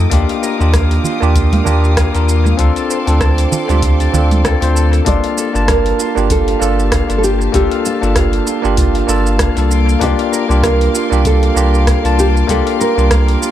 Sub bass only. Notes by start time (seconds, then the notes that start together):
0.12 D#2
0.60 D#2
1.22 D#2
1.66 D#2
2.15 D#2
2.59 D2
3.07 D2
3.69 D2
4.14 D2
4.62 D2
5.06 G1
5.55 G1
6.17 G1
6.61 G1
7.10 G1
7.54 G1
8.02 G1
8.64 G1
9.08 G1
9.57 C2
10.01 C2
10.50 C2
11.12 C2
11.56 C2
12.05 C2
12.49 C2
12.98 C2